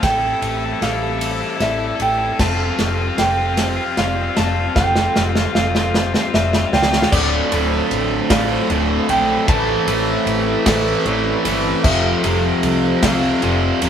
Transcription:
Already playing: A3 C4
0.03 A1 A2 E3 G3 E4 G4 A4 G5, kick, snare, ride
0.11 E4 A4
0.18 E4 A4
0.27 E4 A4
0.33 E4 A4
0.42 A1 C4 E4 A4, ride
0.49 E4 A4
0.57 E4 A4
0.65 E4 A4
0.72 E4 A4
0.80 A1 E4 A4 F5, snare, ride
0.87 E4 A4
0.94 E4 A4
1.02 E4 A4
1.09 E4 A4
1.18 C4 E4 A4 C5, ride
1.25 E4 A4
1.32 E4 A4
1.41 E4 A4
1.49 E4 A4
1.56 A1 E4 A4
1.60 E4 A4 D5 E5, snare, ride
1.71 E4 A4
1.79 E4 A4
1.86 E4 A4
1.95 E4 A4
2.00 A1 E4 A4 G5, ride
2.09 E4 A4
2.17 E4 A4
2.24 E4 A4
2.33 E4 A4
2.39 F1 F2 G3 C4 F4 A4 A5, kick, snare, crash
2.47 C4 F4
2.55 C4 F4
2.62 C4 F4
2.70 C4 F4
2.77 F1 G3 C4 F4, snare, ride
2.85 C4 F4
2.93 C4 F4
3.01 C4 F4
3.07 C4 F4
3.17 F1 C4 F4 A4 G5, snare, ride
3.23 C4 F4
3.31 C4 F4
3.38 C4 F4
3.46 C4 F4
3.53 C4 F4
3.57 G3 C4 F4 C5, snare, ride
3.68 C4 F4
3.77 C4 F4
3.83 C4 F4
3.92 C4 F4
3.97 F1 C4 F4 D5 F5, snare, ride
4.07 C4 F4
4.15 C4 F4
4.21 C4 F4
4.30 C4 F4
4.36 F1 C4 F4 A5, snare, ride
4.44 C4 F4
4.51 C4 F4
4.60 C4 F4
4.67 C4 F4
4.76 F1 F2 C4 F4 A4 G5, kick, snare
4.83 C4 F4
4.91 C4 F4
4.96 snare
5.00 C4 F4
5.06 C4 F4
5.13 F1 G3 C4 F4, snare
5.22 C4 F4
5.30 C4 F4 F5
5.36 C4 F4, snare
5.45 C4 F4
5.53 F1 C4 F4 A4 F5, snare
5.59 C4 F4
5.68 C4 F4
5.75 C4 F4, snare
5.83 C4 F4
5.90 C4 F4
5.94 G3 C5, snare
5.98 C4 F4
6.06 C4 F4
6.13 C4 F4, snare
6.21 C4 F4
6.27 C4 F4
6.33 F1 C4 F4 D5 E5, snare
6.44 C4 F4
6.52 C4 F4, snare
6.59 C4 F4
6.66 C4 F4
6.73 C#2 C4 F4 G5, snare
6.82 C4 F4, snare
6.90 C4 F4, snare
6.97 C4 F4
7.02 C4 F4, snare
7.12 D1 D2 A2 D3 A3 C4 D4 F4 A4 C5 D5, kick, crash
7.51 D1 D2 A2 D3 A3, ride
7.91 A1 C4 A4, ride
8.30 A1 D2 A2 D3 F4 C5 F5, kick, snare, ride
8.69 D1 D2 A2 D3 C4, ride
9.09 A#1 D2 A2 D3 A3 G5, ride
9.47 A1 A2 E3 A3 C4 E4 G4 A4 C5 A5, kick, ride
9.87 A1 A2 E3 A3 C4, ride
10.26 A1 E4 A4, ride
10.66 A1 A2 E3 A3 A4 C5, kick, snare, ride
11.05 A1 A2 E3 A3 E4 D5, ride
11.45 G1 A2 E3 A3 C4, ride
11.83 F1 F2 C3 F3 F4 A4 C5 E5, kick, crash
12.24 F1 F2 C3 F3 G3, ride
12.63 C2 C4 A4, ride
13.03 C2 F2 C3 F3 F4 F5, kick, snare, ride
13.42 F1 F2 C3 F3 C4 D5, ride
13.82 D1 F2 C3 F3 G3, ride

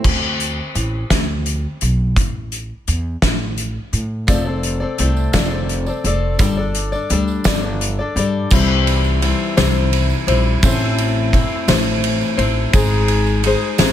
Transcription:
Already playing: C4
0.04 D2, kick, crash
0.40 closed hi-hat
0.75 A1, closed hi-hat
1.10 D2, kick, snare, closed hi-hat
1.46 closed hi-hat
1.81 B1, closed hi-hat
2.16 A1, kick, closed hi-hat
2.52 closed hi-hat
2.87 E2, closed hi-hat
3.22 A1, kick, snare, closed hi-hat
3.57 closed hi-hat
3.93 A2, closed hi-hat
4.27 F1 F3 A3 C4 A4 D5, kick, closed hi-hat, tambourine
4.45 C4 A4 D5
4.63 closed hi-hat
4.80 C4 A4 D5
4.98 C2 A3 C4 A4 D5, closed hi-hat, tambourine
5.17 tambourine
5.33 F1 F3 A3 C4 A4 D5, kick, snare, closed hi-hat, tambourine
5.50 C4 A4 D5
5.69 closed hi-hat
5.86 C4 A4 D5, tambourine
6.04 F1 A3 C4 A4 D5, closed hi-hat
6.39 G1 G3 D4 A4 D5, kick, closed hi-hat, tambourine
6.57 D4 A4 D5
6.74 closed hi-hat
6.92 D4 A4 D5, tambourine
7.09 D2 G3 D4 A4 D5, closed hi-hat, tambourine
7.28 tambourine
7.44 G1 G3 D4 A4 D5, kick, snare, closed hi-hat, tambourine
7.62 D4 A4 D5, tambourine
7.81 closed hi-hat
7.99 D4 A4 D5
8.16 G2 G3 D4 A4 D5, closed hi-hat
8.51 C2 C3 E3 G3 C4 E4, kick, crash, tambourine
8.55 C5
8.87 ride
9.04 tambourine
9.22 G3 C4 E4 C5, ride, tambourine
9.57 C2 C3 E3 G3 C4 E4 C5, snare, ride, tambourine
9.93 ride, tambourine
10.10 tambourine
10.27 A#1 G3 C4 E4 C5, ride
10.63 A1 A2 E3 A3 C4 E4 C5, kick, ride, tambourine
10.98 ride
11.33 A3 C4 E4 C5, kick, ride, tambourine
11.68 A1 A2 E3 A3 C4 E4 C5, snare, ride, tambourine
12.04 ride, tambourine
12.21 tambourine
12.37 A1 A3 C4 E4 C5, ride
12.73 G#1 G#3 D#4 G#4 C5, kick, ride, tambourine
13.08 ride
13.27 tambourine
13.43 G#3 D#4 G#4 C5, ride, tambourine
13.78 G#1 G#3 D#4 G#4 C5, snare, ride, tambourine

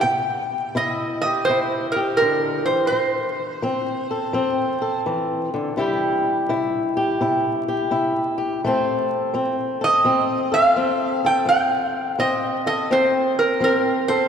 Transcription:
0.01 C3 G5
0.75 C3 E4 D#5
1.22 G4 D#5
1.45 C5
1.49 C3 E4
1.92 A#4
1.96 G4
2.17 A#4
2.21 D3
2.66 E3 C5
2.87 C5
2.92 F3
3.62 F3 C4
4.11 A4
4.33 F3 C4
4.82 A4
5.06 E3
5.54 D3
5.77 C3 G3 E4 G4
6.49 C3 E4
6.97 G4
7.21 C3 E4
7.68 G4
7.91 C3 E4
8.38 G4
8.64 F3 A3 C4 A4 C5
9.34 F3 C4
9.81 A4 D#5
10.05 F3 C4
10.52 A4 F5
10.76 F3 C4
11.24 A4 G5
11.45 F3 G5
12.19 F3 C4 D#5
12.66 A4 D#5
12.91 F3 C4 C5
13.39 A#4
13.60 F3 C4 A#4
14.08 A4 C5

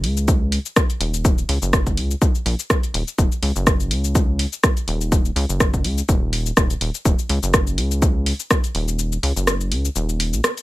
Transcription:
0.04 C#2, open hi-hat
0.17 cabasa
0.28 kick, cabasa
0.52 open hi-hat
0.66 cabasa
0.76 kick, cross-stick, cabasa
0.90 open hi-hat, cabasa
1.00 D#1, open hi-hat
1.14 cabasa
1.25 kick, cabasa
1.38 cabasa
1.49 C#2, open hi-hat
1.62 F#1, cabasa
1.73 kick, cross-stick, cabasa
1.87 kick, open hi-hat, cabasa
1.97 C#2, open hi-hat
2.11 cabasa
2.22 kick, cabasa
2.35 cabasa
2.46 A#1, open hi-hat
2.59 cabasa
2.70 kick, cross-stick, cabasa
2.83 open hi-hat, cabasa
2.94 D#1, open hi-hat
3.08 cabasa
3.18 D#1, kick, cabasa
3.32 cabasa
3.42 C#2, open hi-hat
3.56 F#1, cabasa
3.67 kick, cross-stick, cabasa
3.80 cabasa
3.91 C#2, open hi-hat
4.04 cabasa
4.15 kick, cabasa
4.39 open hi-hat
4.53 cabasa
4.63 kick, cross-stick, cabasa
4.77 open hi-hat, cabasa
4.88 D#1, open hi-hat
5.01 cabasa
5.12 kick, cabasa
5.25 cabasa
5.36 C#2, open hi-hat
5.49 F#1, cabasa
5.60 kick, cross-stick, cabasa
5.74 kick, cabasa
5.84 C#2, open hi-hat
5.98 cabasa
6.09 D#1, kick, cabasa
6.33 open hi-hat
6.46 cabasa
6.57 D#1, kick, cross-stick, cabasa
6.70 open hi-hat, cabasa
6.81 D#1, open hi-hat
6.94 cabasa
7.05 D#1, kick, cabasa
7.19 cabasa
7.29 C#2, open hi-hat
7.43 F#1, cabasa
7.54 kick, cross-stick, cabasa
7.67 cabasa
7.78 C#2, open hi-hat
7.91 cabasa
8.02 kick, cabasa
8.26 open hi-hat
8.40 cabasa
8.51 kick, cross-stick, cabasa
8.64 open hi-hat, cabasa
8.75 D#1, open hi-hat
8.88 cabasa
8.99 cabasa
9.12 cabasa
9.23 C#2, open hi-hat
9.36 F#1, cabasa
9.47 cross-stick, cabasa
9.61 cabasa
9.72 C#2, open hi-hat
9.85 cabasa
9.96 D#1, cabasa
10.09 cabasa
10.20 open hi-hat
10.33 A#1, cabasa
10.44 cross-stick, cabasa
10.57 open hi-hat, cabasa

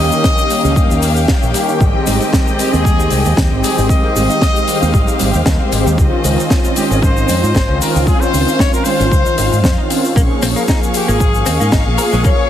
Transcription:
Already playing: A#3 C#5 D#5 F5 G5
0.00 G3
0.11 D#3 A#3 C#4 D#4 G4, shaker
0.24 G3, kick, snare, shaker
0.38 G4, shaker
0.49 D#3 G3 A#3 C#4 G4, open hi-hat, shaker
0.64 C#2 C#4, shaker
0.76 G2 G3, kick, shaker
0.89 D#2 D#3 A#3 C#4 D#4 G4, shaker
1.02 G3, open hi-hat, shaker
1.15 G4, shaker
1.28 G3, kick, snare, shaker
1.42 A#1 D#3 A#3 C#4 G4, shaker
1.54 G3, open hi-hat, shaker
1.68 D#4, shaker
1.80 G#1 D#3 G3 G#3 C4 G4 C5 D#5, kick, shaker
1.94 C4
2.06 G#1 G3, open hi-hat, shaker
2.20 D#3 G#3 C4 D#4 G4, shaker
2.33 G3, kick, snare, shaker
2.46 G4, shaker
2.58 D#3 G3 G#3 C4 G4, open hi-hat, shaker
2.72 D#2 C4 G#4, shaker
2.85 G3, kick, shaker
2.98 D#3 G#3 C4 D#4 G4, shaker
3.10 C2 G3, open hi-hat, shaker
3.25 D#2 G4, shaker
3.37 D#2 G3, kick, snare, shaker
3.50 G#1 D#3 G#3 C4 G4
3.63 G3 G#4, open hi-hat, shaker
3.77 G#1 D#4, shaker
3.89 D#3 G3 G#3 C4 G4 D#5 F5, kick, shaker
4.03 C4
4.16 G#1 G3, open hi-hat, shaker
4.29 D#3 G#3 C4 D#4 G4, shaker
4.41 G3, kick, snare, shaker
4.56 G4, shaker
4.67 D#3 G3 G#3 C4 G4, open hi-hat, shaker
4.81 D#2 C4, shaker
4.93 G#1 G3, kick, shaker
5.07 D#3 G#3 C4 D#4 G4, shaker
5.19 G#1 G3, open hi-hat, shaker
5.33 D#2 G4, shaker
5.46 D#2 G3, kick, snare, shaker
5.60 D#3 G#3 C4 G4
5.72 G#1 G3, open hi-hat, shaker
5.86 D#2 D#4, shaker
5.98 D#3 G#3 C4 C#4 F4 D#5, kick, shaker
6.12 C#4
6.24 C#2 G#3, open hi-hat, shaker
6.38 D#3 C4 C#4 D#4 F4, shaker
6.50 G#3, kick, snare, shaker
6.64 F4, shaker
6.76 D#3 G#3 C4 C#4 F4 G4, open hi-hat, shaker
6.91 G#1 C#4 G#4, shaker
7.02 G#3 C5, kick, shaker
7.16 D#3 C4 C#4 D#4 F4, shaker
7.28 F2 G#3, open hi-hat, shaker
7.42 G#2 F4, shaker
7.55 G#1 G#3, kick, snare, shaker
7.68 C#2 D#3 C4 C#4 F4
7.81 G#3 A#4, open hi-hat, shaker
7.95 C#2 D#4, shaker
8.07 D#3 G#3 C4 C#4 F4 G#4 F5, kick, shaker
8.21 C#4 C5, shaker
8.33 C#2 G#3, open hi-hat, shaker
8.47 D#3 C4 C#4 D#4 F4, shaker
8.59 G#3 C#5, kick, snare, shaker
8.73 F4 A#4, shaker
8.85 D#3 G#3 C4 C#4 F4 C5, open hi-hat, shaker
9.00 G#1 C#4, shaker
9.11 C#2 G#3, kick, shaker
9.25 D#3 C4 C#4 D#4 F4, shaker
9.38 G#1 D#4, open hi-hat, shaker
9.52 G#2 G#3, shaker
9.64 F2 D#4, kick, snare, shaker
9.77 D#3 C4 C#4 D#4 F4
9.90 D#4, open hi-hat, shaker
10.04 F4, shaker
10.16 A#1 F3 A#3 C#4 G#4 F5 C#6, kick, shaker
10.42 A#1 C4, open hi-hat, shaker
10.56 F3 A#3 G#4, shaker
10.68 D#4, kick, snare, shaker
10.83 shaker
10.94 F3 A#3 G4 G#4, open hi-hat, shaker
11.08 G#1 A#3 G#4, shaker
11.20 kick, shaker
11.34 F3 A#3 C#4 G#4, shaker
11.46 D#2 C4, open hi-hat, shaker
11.60 G#2 A#3, shaker
11.72 G#1 D#4, kick, snare, shaker
11.86 A#1 F3 A#3 G#4
11.98 G#4 A#4, open hi-hat, shaker
12.12 A#1 G#3, shaker
12.24 F3 A#3 C#4 G#4 C#5, kick, shaker

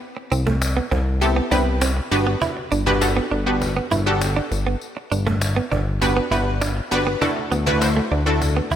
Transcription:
Already playing: B3 C4 E4 G4 B4
0.02 cajon slap
0.17 muted clean electric guitar stroke, cajon slap
0.31 C2 C4, tambourine
0.47 A3, cajon bass
0.61 muted clean electric guitar stroke, cajon slap, tambourine
0.77 B3, cajon slap
0.91 C2 C4, cajon bass
1.06 cajon slap
1.21 B3 C4 E4 G4 A4, muted clean electric guitar stroke, tambourine
1.36 B3, cajon slap
1.51 C2 B3 C4 D4 E4 G4 B4, cajon bass, tambourine
1.67 cajon slap
1.81 C4, cajon slap, tambourine
1.97 muted clean electric guitar stroke, cajon slap
2.11 G1 B3 D4 F#4 G4 B4, tambourine
2.27 B3, cajon slap
2.41 E4, cajon bass, tambourine
2.57 muted clean electric guitar stroke, cajon slap
2.71 G1 D4, cajon slap, tambourine
2.86 B3 D4 F#4 G4 B4, cajon bass
3.01 B3 D4 F#4 G4 A4, muted clean electric guitar stroke, cajon slap, tambourine
3.17 B3, cajon slap
3.31 G1 D4, cajon slap
3.46 B3 D4 F#4 G4 B4
3.62 muted clean electric guitar stroke, cajon bass, cajon slap, tambourine
3.76 B3, cajon slap
3.91 G1 E4, cajon bass, tambourine
4.06 B3 D4 F#4 G4 A4, cajon slap
4.21 cajon slap, tambourine
4.37 D4, cajon slap
4.52 G1, muted clean electric guitar stroke, tambourine
4.67 B3, cajon slap
4.81 cajon slap, tambourine
4.96 muted clean electric guitar stroke, cajon slap
5.11 G1 D4, cajon slap, tambourine
5.27 A3, cajon bass
5.41 muted clean electric guitar stroke, cajon slap, tambourine
5.56 B3, cajon slap
5.72 G1 D4, cajon bass
5.86 cajon slap
6.01 B3 D4 F#4 G4 B4, muted clean electric guitar stroke, cajon bass, cajon slap, tambourine
6.17 B3, cajon slap
6.31 G1 B3 D4 E4 F#4 G4 B4, cajon bass, tambourine
6.47 cajon slap
6.61 D4, cajon slap, tambourine
6.77 muted clean electric guitar stroke, cajon slap
6.91 G1 B3 D4 F#4 G4 B4, tambourine
7.07 B3, cajon slap
7.21 A3 D4 E4 F#4 A4, cajon bass, tambourine
7.37 muted clean electric guitar stroke, cajon slap
7.52 D2 B3, cajon slap, tambourine
7.66 A3 D4 E4 F#4 B4, cajon bass
7.81 A3 D4 E4 F#4 C5, muted clean electric guitar stroke, cajon slap, tambourine
7.97 A3, cajon slap
8.12 D2 D4, cajon slap
8.26 A3 D4 E4 F#4 A4, cajon slap
8.42 muted clean electric guitar stroke, cajon bass, cajon slap, tambourine
8.57 B3, cajon slap
8.71 D2 E4, cajon bass, tambourine

